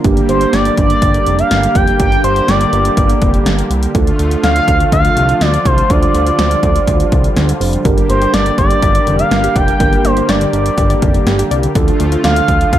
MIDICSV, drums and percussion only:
0, 0, Header, 1, 2, 480
1, 0, Start_track
1, 0, Key_signature, -2, "minor"
1, 0, Tempo, 487805
1, 45, Time_signature, 4, 2, 24, 8
1, 12583, End_track
2, 0, Start_track
2, 0, Title_t, "Drums"
2, 44, Note_on_c, 9, 42, 81
2, 45, Note_on_c, 9, 36, 113
2, 143, Note_off_c, 9, 36, 0
2, 143, Note_off_c, 9, 42, 0
2, 167, Note_on_c, 9, 42, 45
2, 265, Note_off_c, 9, 42, 0
2, 285, Note_on_c, 9, 42, 76
2, 383, Note_off_c, 9, 42, 0
2, 403, Note_on_c, 9, 42, 47
2, 501, Note_off_c, 9, 42, 0
2, 522, Note_on_c, 9, 38, 113
2, 523, Note_on_c, 9, 42, 73
2, 621, Note_off_c, 9, 38, 0
2, 622, Note_off_c, 9, 42, 0
2, 644, Note_on_c, 9, 42, 58
2, 742, Note_off_c, 9, 42, 0
2, 763, Note_on_c, 9, 36, 90
2, 765, Note_on_c, 9, 42, 61
2, 861, Note_off_c, 9, 36, 0
2, 863, Note_off_c, 9, 42, 0
2, 886, Note_on_c, 9, 42, 57
2, 984, Note_off_c, 9, 42, 0
2, 1004, Note_on_c, 9, 36, 96
2, 1004, Note_on_c, 9, 42, 85
2, 1102, Note_off_c, 9, 36, 0
2, 1103, Note_off_c, 9, 42, 0
2, 1126, Note_on_c, 9, 42, 57
2, 1224, Note_off_c, 9, 42, 0
2, 1245, Note_on_c, 9, 42, 65
2, 1343, Note_off_c, 9, 42, 0
2, 1365, Note_on_c, 9, 42, 49
2, 1463, Note_off_c, 9, 42, 0
2, 1485, Note_on_c, 9, 42, 70
2, 1486, Note_on_c, 9, 38, 113
2, 1584, Note_off_c, 9, 42, 0
2, 1585, Note_off_c, 9, 38, 0
2, 1608, Note_on_c, 9, 42, 59
2, 1707, Note_off_c, 9, 42, 0
2, 1724, Note_on_c, 9, 36, 102
2, 1728, Note_on_c, 9, 42, 75
2, 1822, Note_off_c, 9, 36, 0
2, 1826, Note_off_c, 9, 42, 0
2, 1845, Note_on_c, 9, 42, 52
2, 1943, Note_off_c, 9, 42, 0
2, 1964, Note_on_c, 9, 36, 116
2, 1964, Note_on_c, 9, 42, 81
2, 2062, Note_off_c, 9, 42, 0
2, 2063, Note_off_c, 9, 36, 0
2, 2087, Note_on_c, 9, 42, 45
2, 2185, Note_off_c, 9, 42, 0
2, 2205, Note_on_c, 9, 42, 76
2, 2304, Note_off_c, 9, 42, 0
2, 2324, Note_on_c, 9, 42, 50
2, 2422, Note_off_c, 9, 42, 0
2, 2443, Note_on_c, 9, 38, 113
2, 2444, Note_on_c, 9, 42, 75
2, 2541, Note_off_c, 9, 38, 0
2, 2542, Note_off_c, 9, 42, 0
2, 2565, Note_on_c, 9, 42, 58
2, 2663, Note_off_c, 9, 42, 0
2, 2685, Note_on_c, 9, 42, 61
2, 2783, Note_off_c, 9, 42, 0
2, 2805, Note_on_c, 9, 42, 57
2, 2904, Note_off_c, 9, 42, 0
2, 2924, Note_on_c, 9, 36, 97
2, 2924, Note_on_c, 9, 42, 85
2, 3022, Note_off_c, 9, 36, 0
2, 3023, Note_off_c, 9, 42, 0
2, 3045, Note_on_c, 9, 42, 59
2, 3144, Note_off_c, 9, 42, 0
2, 3164, Note_on_c, 9, 42, 63
2, 3166, Note_on_c, 9, 36, 102
2, 3263, Note_off_c, 9, 42, 0
2, 3264, Note_off_c, 9, 36, 0
2, 3285, Note_on_c, 9, 42, 50
2, 3383, Note_off_c, 9, 42, 0
2, 3405, Note_on_c, 9, 42, 69
2, 3407, Note_on_c, 9, 38, 112
2, 3504, Note_off_c, 9, 42, 0
2, 3505, Note_off_c, 9, 38, 0
2, 3528, Note_on_c, 9, 42, 62
2, 3626, Note_off_c, 9, 42, 0
2, 3648, Note_on_c, 9, 42, 77
2, 3746, Note_off_c, 9, 42, 0
2, 3765, Note_on_c, 9, 42, 52
2, 3864, Note_off_c, 9, 42, 0
2, 3885, Note_on_c, 9, 36, 120
2, 3885, Note_on_c, 9, 42, 84
2, 3983, Note_off_c, 9, 42, 0
2, 3984, Note_off_c, 9, 36, 0
2, 4008, Note_on_c, 9, 42, 45
2, 4106, Note_off_c, 9, 42, 0
2, 4126, Note_on_c, 9, 42, 76
2, 4224, Note_off_c, 9, 42, 0
2, 4245, Note_on_c, 9, 42, 49
2, 4343, Note_off_c, 9, 42, 0
2, 4364, Note_on_c, 9, 38, 111
2, 4365, Note_on_c, 9, 42, 74
2, 4463, Note_off_c, 9, 38, 0
2, 4464, Note_off_c, 9, 42, 0
2, 4485, Note_on_c, 9, 42, 59
2, 4584, Note_off_c, 9, 42, 0
2, 4604, Note_on_c, 9, 36, 89
2, 4607, Note_on_c, 9, 42, 61
2, 4702, Note_off_c, 9, 36, 0
2, 4705, Note_off_c, 9, 42, 0
2, 4728, Note_on_c, 9, 42, 55
2, 4826, Note_off_c, 9, 42, 0
2, 4844, Note_on_c, 9, 36, 97
2, 4846, Note_on_c, 9, 42, 83
2, 4943, Note_off_c, 9, 36, 0
2, 4944, Note_off_c, 9, 42, 0
2, 4966, Note_on_c, 9, 42, 56
2, 5065, Note_off_c, 9, 42, 0
2, 5085, Note_on_c, 9, 42, 66
2, 5184, Note_off_c, 9, 42, 0
2, 5205, Note_on_c, 9, 42, 47
2, 5303, Note_off_c, 9, 42, 0
2, 5326, Note_on_c, 9, 42, 70
2, 5327, Note_on_c, 9, 38, 115
2, 5424, Note_off_c, 9, 42, 0
2, 5425, Note_off_c, 9, 38, 0
2, 5449, Note_on_c, 9, 42, 61
2, 5547, Note_off_c, 9, 42, 0
2, 5565, Note_on_c, 9, 36, 99
2, 5568, Note_on_c, 9, 42, 79
2, 5663, Note_off_c, 9, 36, 0
2, 5667, Note_off_c, 9, 42, 0
2, 5686, Note_on_c, 9, 42, 50
2, 5785, Note_off_c, 9, 42, 0
2, 5806, Note_on_c, 9, 36, 118
2, 5806, Note_on_c, 9, 42, 82
2, 5904, Note_off_c, 9, 36, 0
2, 5905, Note_off_c, 9, 42, 0
2, 5929, Note_on_c, 9, 42, 46
2, 6028, Note_off_c, 9, 42, 0
2, 6047, Note_on_c, 9, 42, 73
2, 6145, Note_off_c, 9, 42, 0
2, 6165, Note_on_c, 9, 42, 49
2, 6264, Note_off_c, 9, 42, 0
2, 6285, Note_on_c, 9, 38, 112
2, 6286, Note_on_c, 9, 42, 74
2, 6383, Note_off_c, 9, 38, 0
2, 6384, Note_off_c, 9, 42, 0
2, 6406, Note_on_c, 9, 42, 57
2, 6505, Note_off_c, 9, 42, 0
2, 6524, Note_on_c, 9, 36, 88
2, 6527, Note_on_c, 9, 42, 59
2, 6623, Note_off_c, 9, 36, 0
2, 6625, Note_off_c, 9, 42, 0
2, 6648, Note_on_c, 9, 42, 55
2, 6746, Note_off_c, 9, 42, 0
2, 6765, Note_on_c, 9, 36, 96
2, 6767, Note_on_c, 9, 42, 86
2, 6863, Note_off_c, 9, 36, 0
2, 6865, Note_off_c, 9, 42, 0
2, 6888, Note_on_c, 9, 42, 56
2, 6986, Note_off_c, 9, 42, 0
2, 7007, Note_on_c, 9, 36, 101
2, 7007, Note_on_c, 9, 42, 63
2, 7105, Note_off_c, 9, 42, 0
2, 7106, Note_off_c, 9, 36, 0
2, 7127, Note_on_c, 9, 42, 49
2, 7225, Note_off_c, 9, 42, 0
2, 7247, Note_on_c, 9, 42, 72
2, 7248, Note_on_c, 9, 38, 106
2, 7346, Note_off_c, 9, 42, 0
2, 7347, Note_off_c, 9, 38, 0
2, 7370, Note_on_c, 9, 42, 64
2, 7469, Note_off_c, 9, 42, 0
2, 7490, Note_on_c, 9, 46, 76
2, 7588, Note_off_c, 9, 46, 0
2, 7607, Note_on_c, 9, 42, 52
2, 7706, Note_off_c, 9, 42, 0
2, 7726, Note_on_c, 9, 36, 117
2, 7726, Note_on_c, 9, 42, 80
2, 7824, Note_off_c, 9, 36, 0
2, 7824, Note_off_c, 9, 42, 0
2, 7849, Note_on_c, 9, 42, 45
2, 7947, Note_off_c, 9, 42, 0
2, 7967, Note_on_c, 9, 42, 73
2, 8065, Note_off_c, 9, 42, 0
2, 8085, Note_on_c, 9, 42, 49
2, 8183, Note_off_c, 9, 42, 0
2, 8203, Note_on_c, 9, 38, 114
2, 8205, Note_on_c, 9, 42, 76
2, 8302, Note_off_c, 9, 38, 0
2, 8303, Note_off_c, 9, 42, 0
2, 8325, Note_on_c, 9, 42, 56
2, 8423, Note_off_c, 9, 42, 0
2, 8443, Note_on_c, 9, 36, 90
2, 8445, Note_on_c, 9, 42, 61
2, 8542, Note_off_c, 9, 36, 0
2, 8543, Note_off_c, 9, 42, 0
2, 8566, Note_on_c, 9, 42, 56
2, 8664, Note_off_c, 9, 42, 0
2, 8684, Note_on_c, 9, 36, 99
2, 8684, Note_on_c, 9, 42, 82
2, 8782, Note_off_c, 9, 36, 0
2, 8782, Note_off_c, 9, 42, 0
2, 8806, Note_on_c, 9, 42, 58
2, 8904, Note_off_c, 9, 42, 0
2, 8925, Note_on_c, 9, 42, 65
2, 9023, Note_off_c, 9, 42, 0
2, 9044, Note_on_c, 9, 42, 48
2, 9143, Note_off_c, 9, 42, 0
2, 9165, Note_on_c, 9, 42, 67
2, 9166, Note_on_c, 9, 38, 110
2, 9263, Note_off_c, 9, 42, 0
2, 9264, Note_off_c, 9, 38, 0
2, 9288, Note_on_c, 9, 42, 60
2, 9386, Note_off_c, 9, 42, 0
2, 9404, Note_on_c, 9, 36, 100
2, 9408, Note_on_c, 9, 42, 78
2, 9503, Note_off_c, 9, 36, 0
2, 9506, Note_off_c, 9, 42, 0
2, 9526, Note_on_c, 9, 42, 51
2, 9624, Note_off_c, 9, 42, 0
2, 9645, Note_on_c, 9, 36, 119
2, 9645, Note_on_c, 9, 42, 83
2, 9743, Note_off_c, 9, 36, 0
2, 9744, Note_off_c, 9, 42, 0
2, 9768, Note_on_c, 9, 42, 45
2, 9867, Note_off_c, 9, 42, 0
2, 9886, Note_on_c, 9, 42, 77
2, 9984, Note_off_c, 9, 42, 0
2, 10005, Note_on_c, 9, 42, 50
2, 10103, Note_off_c, 9, 42, 0
2, 10123, Note_on_c, 9, 38, 114
2, 10124, Note_on_c, 9, 42, 76
2, 10222, Note_off_c, 9, 38, 0
2, 10223, Note_off_c, 9, 42, 0
2, 10245, Note_on_c, 9, 42, 56
2, 10343, Note_off_c, 9, 42, 0
2, 10366, Note_on_c, 9, 42, 60
2, 10464, Note_off_c, 9, 42, 0
2, 10487, Note_on_c, 9, 42, 54
2, 10585, Note_off_c, 9, 42, 0
2, 10604, Note_on_c, 9, 36, 100
2, 10605, Note_on_c, 9, 42, 85
2, 10702, Note_off_c, 9, 36, 0
2, 10704, Note_off_c, 9, 42, 0
2, 10726, Note_on_c, 9, 42, 58
2, 10824, Note_off_c, 9, 42, 0
2, 10845, Note_on_c, 9, 42, 62
2, 10847, Note_on_c, 9, 36, 103
2, 10944, Note_off_c, 9, 42, 0
2, 10945, Note_off_c, 9, 36, 0
2, 10965, Note_on_c, 9, 42, 49
2, 11064, Note_off_c, 9, 42, 0
2, 11086, Note_on_c, 9, 42, 69
2, 11087, Note_on_c, 9, 38, 110
2, 11185, Note_off_c, 9, 42, 0
2, 11186, Note_off_c, 9, 38, 0
2, 11209, Note_on_c, 9, 42, 64
2, 11308, Note_off_c, 9, 42, 0
2, 11329, Note_on_c, 9, 42, 77
2, 11428, Note_off_c, 9, 42, 0
2, 11446, Note_on_c, 9, 42, 50
2, 11545, Note_off_c, 9, 42, 0
2, 11565, Note_on_c, 9, 36, 116
2, 11565, Note_on_c, 9, 42, 83
2, 11664, Note_off_c, 9, 36, 0
2, 11664, Note_off_c, 9, 42, 0
2, 11689, Note_on_c, 9, 42, 47
2, 11787, Note_off_c, 9, 42, 0
2, 11806, Note_on_c, 9, 42, 77
2, 11905, Note_off_c, 9, 42, 0
2, 11926, Note_on_c, 9, 42, 51
2, 12024, Note_off_c, 9, 42, 0
2, 12045, Note_on_c, 9, 38, 113
2, 12046, Note_on_c, 9, 42, 75
2, 12143, Note_off_c, 9, 38, 0
2, 12144, Note_off_c, 9, 42, 0
2, 12166, Note_on_c, 9, 42, 57
2, 12264, Note_off_c, 9, 42, 0
2, 12284, Note_on_c, 9, 36, 89
2, 12286, Note_on_c, 9, 42, 62
2, 12382, Note_off_c, 9, 36, 0
2, 12385, Note_off_c, 9, 42, 0
2, 12407, Note_on_c, 9, 42, 55
2, 12505, Note_off_c, 9, 42, 0
2, 12525, Note_on_c, 9, 36, 97
2, 12526, Note_on_c, 9, 42, 87
2, 12583, Note_off_c, 9, 36, 0
2, 12583, Note_off_c, 9, 42, 0
2, 12583, End_track
0, 0, End_of_file